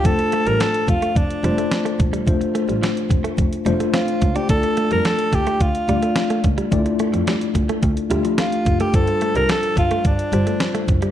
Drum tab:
HH |xxxxxxxxxxxxxxxx|xxxxxxxxxxxxxxxx|xxxxxxxxxxxxxxxx|xxxxxxxxxxxxxxxx|
SD |----o-------o---|----o-------o---|----o-------o---|----o-------o---|
BD |o-----o-o-----o-|o-----o-o-----o-|o-----o-o-----o-|o-----o-o-----o-|

HH |xxxxxxxxxxxxxxxx|
SD |----o-------o---|
BD |o-----o-o-----o-|